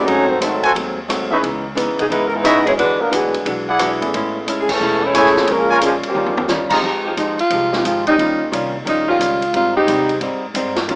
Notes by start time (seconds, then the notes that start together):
0.04 G#1 G#2 A3 C#4 D#4 F#4 C#5, ride
0.08 F#3 A3 C4
0.27 D#3 F#3 A3 C4 D#4 F#4 C5
0.39 G#2 D#3 F#3 A3 C4 D#4 A4, hi-hat pedal, ride
0.63 F#4 A4 C5 G#5, ride
0.74 D#2 G#2 F#3 A3 C4, ride
1.08 G#2 F#3 A3 C4, cross-stick, hi-hat pedal, ride
1.30 E3 B3 C#4 D#4 G#4 B4 C#5 E5
1.41 C#2 C#3 E3 B3 D#4, ride
1.75 C#3 E3 B3 D#4, hi-hat pedal, ride
1.88 D#2
1.98 C2 B2 E3 G#3 B3 D#4 G#4, ride
2.09 G#2 C#3 E3 G#3 B3 D#4 E4 B4, ride
2.27 A#4
2.33 E3 G#3 B3 D#4 E4 B4
2.43 C#3 E3 G#3 B3 D#4 E4 G#4 B4 C#5 D#5 E5, cross-stick, hi-hat pedal, ride
2.65 E3 F#3 G#3 B3 C#4 D4 E4 G#4 C#5, ride
2.77 E2 D3 E3 G#3 B3 D4 F#4 B4, ride
3.00 F#3 A#3 B3 D4 A#4
3.11 D2 B2 D3 E3 F#3 G#3 B3 D4 F#4 G#4, hi-hat pedal, ride
3.34 ride
3.45 B1 E3 G#3 D4 F#4, ride
3.68 E4 G#4 D5 F#5
3.79 E3 G#3 D4 F#4, cross-stick, hi-hat pedal, ride
4.01 G#1 A3 B3 C#4 E4 G#4, ride
4.14 A1 A2 G#3 C#4 E4, ride
4.46 A2 G#3 C#4 E4, hi-hat pedal, ride
4.60 G#4
4.69 E2 C#3 E3 A3 C#4 G#4 A4, kick, crash
4.80 E1 A2 G#3 C#4 E4
5.03 E3 G#3 A3 C#4 E4 G#4 C#5
5.14 A2 E3 G#3 A3 C#4 E4 G#4 A4 C#5 G#5, cross-stick, hi-hat pedal, ride
5.26 snare
5.36 A#3 C4 C#4 F4 G#4, muted upright bass stroke, snare
5.47 A#1 A#2 C#3 F3 G#3 A#3 C#4 F4 A#4, ride
5.70 F4 A#4 C#5 G#5
5.81 A#2 C#3 F3 G#3 A#3 C#4 F4, hi-hat pedal, ride
5.85 G#4
6.03 A#2 C#3 F3 G3 C#4, muted upright bass stroke, ride
6.07 A#3 G4
6.15 D#2 D#3 G3 C#4 F4
6.26 floor tom
6.37 floor tom
6.48 D#3 G3 C#4 F4, snare, hi-hat pedal
6.70 G#3 C4 D#4 F4 G4 G#4 D#5 A#5, kick, crash
6.83 F2 F3 G#3 D#4 G4
7.04 F3 G#3 D#4 G4
7.17 D#2 F3 G#3 D#4 G4, hi-hat pedal, ride
7.39 F4, muted upright bass stroke, ride
7.50 C2 F3 G#3 D#4 G4, ride
7.73 G#3 C4 D#4 F4 G4, snare
7.84 G#1 F3 G#3 D#4 F4 G4, hi-hat pedal, ride
8.07 D#3 G3 C#4 D#4, ride
8.18 D#2 D#3 G3 A#3 C#4 D#4 F4 G4, ride
8.52 C2 D#3 G3 C#4 F4, hi-hat pedal, ride
8.85 A#1 D#3 G3 C#4 D#4 F4, ride
9.08 D#3 G3 C#4 F4
9.19 C#2 D#3 G3 C#4 F4, hi-hat pedal, ride
9.42 ride
9.53 G#1 G#2 G3 C4 D#4 F4, ride
9.76 D#3 G#3 C4 D#4 G4
9.87 C2 G#2 G3 C4 D#4, hi-hat pedal, ride
10.09 ride
10.20 G#2 G3 C4 D#4, ride
10.54 G2 G#2 G3 C4 D#4, hi-hat pedal, ride
10.76 snare, ride
10.87 D#2 D#3 F#3 A#3 C#4 D#4 F4, ride